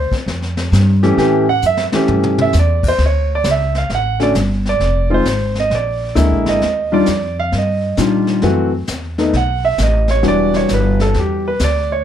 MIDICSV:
0, 0, Header, 1, 5, 480
1, 0, Start_track
1, 0, Tempo, 453515
1, 1242, Time_signature, 4, 2, 24, 8
1, 12745, End_track
2, 0, Start_track
2, 0, Title_t, "Grand piano"
2, 0, Program_c, 0, 0
2, 0, Note_on_c, 0, 72, 81
2, 128, Note_off_c, 0, 72, 0
2, 1089, Note_on_c, 0, 67, 80
2, 1091, Note_on_c, 0, 52, 72
2, 1094, Note_on_c, 0, 57, 65
2, 1097, Note_on_c, 0, 61, 72
2, 1231, Note_off_c, 0, 52, 0
2, 1236, Note_off_c, 0, 61, 0
2, 1236, Note_off_c, 0, 67, 0
2, 1237, Note_off_c, 0, 57, 0
2, 1247, Note_on_c, 0, 52, 70
2, 1252, Note_on_c, 0, 61, 64
2, 1252, Note_on_c, 0, 67, 85
2, 1253, Note_on_c, 0, 57, 65
2, 1532, Note_off_c, 0, 52, 0
2, 1534, Note_off_c, 0, 61, 0
2, 1534, Note_off_c, 0, 67, 0
2, 1535, Note_off_c, 0, 57, 0
2, 1579, Note_on_c, 0, 78, 103
2, 1727, Note_off_c, 0, 78, 0
2, 1760, Note_on_c, 0, 76, 93
2, 1940, Note_off_c, 0, 76, 0
2, 2041, Note_on_c, 0, 52, 67
2, 2044, Note_on_c, 0, 57, 60
2, 2046, Note_on_c, 0, 61, 66
2, 2049, Note_on_c, 0, 67, 73
2, 2556, Note_on_c, 0, 76, 87
2, 2651, Note_off_c, 0, 52, 0
2, 2652, Note_off_c, 0, 57, 0
2, 2653, Note_off_c, 0, 61, 0
2, 2655, Note_off_c, 0, 67, 0
2, 2696, Note_off_c, 0, 76, 0
2, 2744, Note_on_c, 0, 74, 75
2, 3024, Note_off_c, 0, 74, 0
2, 3052, Note_on_c, 0, 72, 93
2, 3184, Note_off_c, 0, 72, 0
2, 3236, Note_on_c, 0, 73, 77
2, 3511, Note_off_c, 0, 73, 0
2, 3548, Note_on_c, 0, 74, 86
2, 3672, Note_off_c, 0, 74, 0
2, 3713, Note_on_c, 0, 76, 77
2, 3989, Note_off_c, 0, 76, 0
2, 3998, Note_on_c, 0, 77, 86
2, 4112, Note_off_c, 0, 77, 0
2, 4128, Note_on_c, 0, 77, 66
2, 4158, Note_off_c, 0, 77, 0
2, 4177, Note_on_c, 0, 78, 94
2, 4441, Note_on_c, 0, 50, 63
2, 4441, Note_on_c, 0, 61, 55
2, 4443, Note_on_c, 0, 66, 66
2, 4445, Note_on_c, 0, 57, 59
2, 4461, Note_off_c, 0, 78, 0
2, 4475, Note_on_c, 0, 74, 83
2, 4562, Note_off_c, 0, 74, 0
2, 4587, Note_off_c, 0, 50, 0
2, 4587, Note_off_c, 0, 61, 0
2, 4588, Note_off_c, 0, 66, 0
2, 4589, Note_off_c, 0, 57, 0
2, 4965, Note_on_c, 0, 74, 87
2, 5392, Note_off_c, 0, 74, 0
2, 5398, Note_on_c, 0, 56, 54
2, 5400, Note_on_c, 0, 51, 60
2, 5403, Note_on_c, 0, 60, 58
2, 5406, Note_on_c, 0, 65, 75
2, 5442, Note_on_c, 0, 72, 80
2, 5546, Note_off_c, 0, 56, 0
2, 5547, Note_off_c, 0, 51, 0
2, 5548, Note_off_c, 0, 60, 0
2, 5550, Note_off_c, 0, 65, 0
2, 5871, Note_off_c, 0, 72, 0
2, 5924, Note_on_c, 0, 75, 92
2, 6061, Note_off_c, 0, 75, 0
2, 6085, Note_on_c, 0, 74, 76
2, 6513, Note_off_c, 0, 74, 0
2, 6513, Note_on_c, 0, 50, 64
2, 6513, Note_on_c, 0, 58, 63
2, 6513, Note_on_c, 0, 64, 75
2, 6514, Note_on_c, 0, 56, 59
2, 6868, Note_on_c, 0, 75, 91
2, 6998, Note_off_c, 0, 58, 0
2, 6999, Note_off_c, 0, 50, 0
2, 6999, Note_off_c, 0, 56, 0
2, 6999, Note_off_c, 0, 64, 0
2, 7303, Note_off_c, 0, 75, 0
2, 7324, Note_on_c, 0, 51, 66
2, 7325, Note_on_c, 0, 62, 60
2, 7328, Note_on_c, 0, 55, 66
2, 7333, Note_on_c, 0, 65, 78
2, 7342, Note_on_c, 0, 74, 82
2, 7468, Note_off_c, 0, 51, 0
2, 7469, Note_off_c, 0, 62, 0
2, 7470, Note_off_c, 0, 55, 0
2, 7473, Note_off_c, 0, 65, 0
2, 7779, Note_off_c, 0, 74, 0
2, 7827, Note_on_c, 0, 77, 97
2, 7971, Note_off_c, 0, 77, 0
2, 8025, Note_on_c, 0, 75, 80
2, 8442, Note_off_c, 0, 75, 0
2, 8444, Note_on_c, 0, 51, 59
2, 8444, Note_on_c, 0, 55, 57
2, 8444, Note_on_c, 0, 62, 50
2, 8449, Note_on_c, 0, 65, 65
2, 8921, Note_on_c, 0, 57, 60
2, 8923, Note_off_c, 0, 51, 0
2, 8923, Note_off_c, 0, 55, 0
2, 8923, Note_off_c, 0, 62, 0
2, 8925, Note_off_c, 0, 65, 0
2, 8925, Note_on_c, 0, 52, 64
2, 8927, Note_on_c, 0, 66, 80
2, 8929, Note_on_c, 0, 60, 61
2, 9208, Note_off_c, 0, 57, 0
2, 9210, Note_off_c, 0, 52, 0
2, 9211, Note_off_c, 0, 66, 0
2, 9212, Note_off_c, 0, 60, 0
2, 9719, Note_on_c, 0, 51, 63
2, 9721, Note_on_c, 0, 57, 56
2, 9724, Note_on_c, 0, 59, 60
2, 9728, Note_on_c, 0, 63, 67
2, 9864, Note_off_c, 0, 51, 0
2, 9865, Note_off_c, 0, 57, 0
2, 9867, Note_off_c, 0, 59, 0
2, 9869, Note_off_c, 0, 63, 0
2, 9915, Note_on_c, 0, 78, 88
2, 10207, Note_off_c, 0, 78, 0
2, 10210, Note_on_c, 0, 76, 85
2, 10361, Note_off_c, 0, 76, 0
2, 10397, Note_on_c, 0, 75, 81
2, 10688, Note_off_c, 0, 75, 0
2, 10697, Note_on_c, 0, 73, 88
2, 10826, Note_on_c, 0, 52, 58
2, 10826, Note_on_c, 0, 55, 56
2, 10828, Note_on_c, 0, 66, 64
2, 10832, Note_on_c, 0, 62, 55
2, 10844, Note_off_c, 0, 73, 0
2, 10881, Note_on_c, 0, 74, 96
2, 11170, Note_off_c, 0, 74, 0
2, 11181, Note_on_c, 0, 73, 81
2, 11325, Note_off_c, 0, 73, 0
2, 11365, Note_on_c, 0, 71, 80
2, 11651, Note_off_c, 0, 71, 0
2, 11658, Note_on_c, 0, 69, 77
2, 11803, Note_off_c, 0, 69, 0
2, 11850, Note_on_c, 0, 67, 69
2, 12133, Note_off_c, 0, 67, 0
2, 12147, Note_on_c, 0, 71, 84
2, 12174, Note_off_c, 0, 52, 0
2, 12174, Note_off_c, 0, 55, 0
2, 12175, Note_off_c, 0, 66, 0
2, 12177, Note_off_c, 0, 62, 0
2, 12287, Note_off_c, 0, 71, 0
2, 12319, Note_on_c, 0, 74, 85
2, 12607, Note_off_c, 0, 74, 0
2, 12618, Note_on_c, 0, 73, 79
2, 12745, Note_off_c, 0, 73, 0
2, 12745, End_track
3, 0, Start_track
3, 0, Title_t, "Upright bass"
3, 0, Program_c, 1, 32
3, 279, Note_on_c, 1, 41, 81
3, 746, Note_off_c, 1, 41, 0
3, 764, Note_on_c, 1, 43, 104
3, 1228, Note_off_c, 1, 43, 0
3, 1241, Note_on_c, 1, 45, 79
3, 1707, Note_off_c, 1, 45, 0
3, 1722, Note_on_c, 1, 42, 83
3, 2019, Note_off_c, 1, 42, 0
3, 2204, Note_on_c, 1, 43, 85
3, 2669, Note_off_c, 1, 43, 0
3, 2688, Note_on_c, 1, 40, 98
3, 3151, Note_off_c, 1, 40, 0
3, 3160, Note_on_c, 1, 38, 78
3, 3628, Note_off_c, 1, 38, 0
3, 3640, Note_on_c, 1, 37, 87
3, 4108, Note_off_c, 1, 37, 0
3, 4122, Note_on_c, 1, 33, 77
3, 4589, Note_off_c, 1, 33, 0
3, 4607, Note_on_c, 1, 31, 94
3, 5072, Note_off_c, 1, 31, 0
3, 5077, Note_on_c, 1, 29, 77
3, 5547, Note_off_c, 1, 29, 0
3, 5563, Note_on_c, 1, 32, 82
3, 6027, Note_off_c, 1, 32, 0
3, 6033, Note_on_c, 1, 34, 82
3, 6504, Note_off_c, 1, 34, 0
3, 6520, Note_on_c, 1, 38, 88
3, 6679, Note_on_c, 1, 34, 56
3, 6695, Note_off_c, 1, 38, 0
3, 6842, Note_off_c, 1, 34, 0
3, 6846, Note_on_c, 1, 32, 65
3, 6994, Note_off_c, 1, 32, 0
3, 7001, Note_on_c, 1, 39, 79
3, 7468, Note_off_c, 1, 39, 0
3, 7492, Note_on_c, 1, 41, 85
3, 7953, Note_off_c, 1, 41, 0
3, 7963, Note_on_c, 1, 43, 74
3, 8428, Note_off_c, 1, 43, 0
3, 8444, Note_on_c, 1, 46, 93
3, 8909, Note_off_c, 1, 46, 0
3, 8921, Note_on_c, 1, 42, 81
3, 9387, Note_off_c, 1, 42, 0
3, 9399, Note_on_c, 1, 40, 82
3, 9865, Note_off_c, 1, 40, 0
3, 9871, Note_on_c, 1, 35, 77
3, 10341, Note_off_c, 1, 35, 0
3, 10354, Note_on_c, 1, 33, 95
3, 10822, Note_off_c, 1, 33, 0
3, 10831, Note_on_c, 1, 28, 74
3, 11300, Note_off_c, 1, 28, 0
3, 11318, Note_on_c, 1, 31, 89
3, 11783, Note_off_c, 1, 31, 0
3, 11801, Note_on_c, 1, 40, 77
3, 12264, Note_off_c, 1, 40, 0
3, 12277, Note_on_c, 1, 38, 95
3, 12742, Note_off_c, 1, 38, 0
3, 12745, End_track
4, 0, Start_track
4, 0, Title_t, "Muted upright bass strokes"
4, 121, Note_on_c, 9, 29, 39
4, 226, Note_off_c, 9, 29, 0
4, 2047, Note_on_c, 9, 29, 41
4, 2153, Note_off_c, 9, 29, 0
4, 12745, End_track
5, 0, Start_track
5, 0, Title_t, "Drums"
5, 123, Note_on_c, 9, 36, 54
5, 129, Note_on_c, 9, 38, 41
5, 229, Note_off_c, 9, 36, 0
5, 235, Note_off_c, 9, 38, 0
5, 293, Note_on_c, 9, 25, 51
5, 293, Note_on_c, 9, 38, 50
5, 399, Note_off_c, 9, 38, 0
5, 447, Note_on_c, 9, 38, 27
5, 552, Note_off_c, 9, 38, 0
5, 604, Note_on_c, 9, 38, 49
5, 710, Note_off_c, 9, 38, 0
5, 770, Note_on_c, 9, 44, 55
5, 774, Note_on_c, 9, 38, 58
5, 876, Note_off_c, 9, 44, 0
5, 880, Note_off_c, 9, 38, 0
5, 1090, Note_on_c, 9, 38, 36
5, 1196, Note_off_c, 9, 38, 0
5, 1250, Note_off_c, 9, 25, 0
5, 1250, Note_on_c, 9, 25, 42
5, 1250, Note_on_c, 9, 38, 43
5, 1356, Note_off_c, 9, 38, 0
5, 1715, Note_on_c, 9, 44, 52
5, 1821, Note_off_c, 9, 44, 0
5, 1876, Note_on_c, 9, 38, 53
5, 1981, Note_off_c, 9, 38, 0
5, 2035, Note_on_c, 9, 38, 70
5, 2141, Note_off_c, 9, 38, 0
5, 2200, Note_on_c, 9, 47, 70
5, 2306, Note_off_c, 9, 47, 0
5, 2364, Note_on_c, 9, 47, 73
5, 2470, Note_off_c, 9, 47, 0
5, 2522, Note_on_c, 9, 47, 95
5, 2628, Note_off_c, 9, 47, 0
5, 2675, Note_on_c, 9, 44, 55
5, 2679, Note_on_c, 9, 38, 53
5, 2781, Note_off_c, 9, 44, 0
5, 2785, Note_off_c, 9, 38, 0
5, 2998, Note_on_c, 9, 36, 66
5, 2999, Note_on_c, 9, 49, 68
5, 3104, Note_off_c, 9, 36, 0
5, 3105, Note_off_c, 9, 49, 0
5, 3158, Note_off_c, 9, 25, 0
5, 3158, Note_on_c, 9, 25, 43
5, 3158, Note_on_c, 9, 38, 38
5, 3264, Note_off_c, 9, 38, 0
5, 3640, Note_on_c, 9, 44, 55
5, 3644, Note_on_c, 9, 38, 62
5, 3746, Note_off_c, 9, 44, 0
5, 3750, Note_off_c, 9, 38, 0
5, 3966, Note_on_c, 9, 38, 36
5, 4072, Note_off_c, 9, 38, 0
5, 4125, Note_off_c, 9, 25, 0
5, 4125, Note_on_c, 9, 25, 50
5, 4125, Note_on_c, 9, 38, 46
5, 4231, Note_off_c, 9, 38, 0
5, 4444, Note_on_c, 9, 38, 39
5, 4550, Note_off_c, 9, 38, 0
5, 4601, Note_on_c, 9, 44, 61
5, 4605, Note_on_c, 9, 38, 58
5, 4707, Note_off_c, 9, 44, 0
5, 4711, Note_off_c, 9, 38, 0
5, 4926, Note_on_c, 9, 38, 36
5, 5032, Note_off_c, 9, 38, 0
5, 5084, Note_off_c, 9, 25, 0
5, 5084, Note_on_c, 9, 25, 48
5, 5084, Note_on_c, 9, 38, 42
5, 5190, Note_off_c, 9, 38, 0
5, 5559, Note_on_c, 9, 44, 56
5, 5563, Note_on_c, 9, 38, 58
5, 5665, Note_off_c, 9, 44, 0
5, 5669, Note_off_c, 9, 38, 0
5, 5878, Note_on_c, 9, 38, 37
5, 5984, Note_off_c, 9, 38, 0
5, 6042, Note_off_c, 9, 25, 0
5, 6042, Note_on_c, 9, 25, 51
5, 6042, Note_on_c, 9, 38, 46
5, 6148, Note_off_c, 9, 38, 0
5, 6516, Note_on_c, 9, 44, 54
5, 6520, Note_on_c, 9, 38, 61
5, 6622, Note_off_c, 9, 44, 0
5, 6626, Note_off_c, 9, 38, 0
5, 6838, Note_on_c, 9, 38, 54
5, 6944, Note_off_c, 9, 38, 0
5, 7001, Note_off_c, 9, 25, 0
5, 7001, Note_on_c, 9, 25, 45
5, 7001, Note_on_c, 9, 38, 44
5, 7107, Note_off_c, 9, 38, 0
5, 7471, Note_on_c, 9, 44, 53
5, 7475, Note_on_c, 9, 38, 60
5, 7577, Note_off_c, 9, 44, 0
5, 7581, Note_off_c, 9, 38, 0
5, 7962, Note_off_c, 9, 25, 0
5, 7962, Note_on_c, 9, 25, 48
5, 7962, Note_on_c, 9, 38, 49
5, 8068, Note_off_c, 9, 38, 0
5, 8435, Note_on_c, 9, 44, 60
5, 8439, Note_on_c, 9, 38, 56
5, 8541, Note_off_c, 9, 44, 0
5, 8545, Note_off_c, 9, 38, 0
5, 8753, Note_on_c, 9, 38, 36
5, 8859, Note_off_c, 9, 38, 0
5, 8908, Note_off_c, 9, 25, 0
5, 8908, Note_on_c, 9, 25, 40
5, 8908, Note_on_c, 9, 38, 44
5, 9014, Note_off_c, 9, 38, 0
5, 9392, Note_on_c, 9, 44, 61
5, 9396, Note_on_c, 9, 38, 66
5, 9498, Note_off_c, 9, 44, 0
5, 9502, Note_off_c, 9, 38, 0
5, 9717, Note_on_c, 9, 38, 38
5, 9822, Note_off_c, 9, 38, 0
5, 9878, Note_off_c, 9, 25, 0
5, 9878, Note_on_c, 9, 25, 49
5, 9878, Note_on_c, 9, 38, 46
5, 9984, Note_off_c, 9, 38, 0
5, 10350, Note_on_c, 9, 44, 62
5, 10354, Note_on_c, 9, 38, 55
5, 10456, Note_off_c, 9, 44, 0
5, 10460, Note_off_c, 9, 38, 0
5, 10667, Note_on_c, 9, 38, 39
5, 10773, Note_off_c, 9, 38, 0
5, 10827, Note_off_c, 9, 25, 0
5, 10827, Note_on_c, 9, 25, 45
5, 10827, Note_on_c, 9, 38, 42
5, 10933, Note_off_c, 9, 38, 0
5, 11153, Note_on_c, 9, 38, 42
5, 11259, Note_off_c, 9, 38, 0
5, 11308, Note_on_c, 9, 44, 51
5, 11312, Note_on_c, 9, 38, 67
5, 11414, Note_off_c, 9, 44, 0
5, 11418, Note_off_c, 9, 38, 0
5, 11638, Note_on_c, 9, 38, 40
5, 11744, Note_off_c, 9, 38, 0
5, 11793, Note_off_c, 9, 25, 0
5, 11793, Note_on_c, 9, 25, 56
5, 11793, Note_on_c, 9, 38, 45
5, 11899, Note_off_c, 9, 38, 0
5, 12271, Note_on_c, 9, 44, 54
5, 12275, Note_on_c, 9, 38, 62
5, 12377, Note_off_c, 9, 44, 0
5, 12381, Note_off_c, 9, 38, 0
5, 12745, Note_off_c, 9, 25, 0
5, 12745, End_track
0, 0, End_of_file